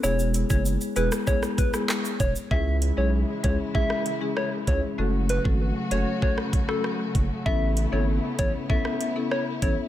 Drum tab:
HH |--x---x---x---x-|--x---x---x---x-|--x---x---x---x-|--x---x---x---x-|
SH |xxxxxxxxxxxxxxxx|----------------|----------------|----------------|
CP |------------x---|----------------|----------------|----------------|
SD |-------r-r-rr---|---------r--r---|---------r-rr---|---------r--r---|
BD |---o----o-o---o-|o-----o-o-----o-|---o----o-o---o-|o-----o-o-----o-|